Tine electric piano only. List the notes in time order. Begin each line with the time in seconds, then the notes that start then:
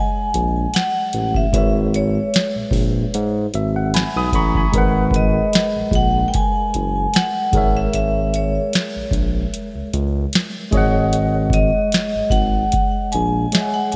Already playing: G#3 G#4 C#5 D#5 F#5
1.51 G#3 G#4 B4
1.56 C#5 E5
3.55 E5
3.76 F#5
3.94 G#5 B5
4.17 B5 D#6
4.35 A#5 B5 C#6
4.57 G#5 B5
4.72 G#3 G#4 A#4
4.76 B4 F#5
7.52 G#3 G#4 A#4
7.56 C#5 E5
10.71 G#3 G#4 C#5
10.76 D#5 F#5
13.52 G#3 G#4 C#5 D#5 E5
13.61 F#5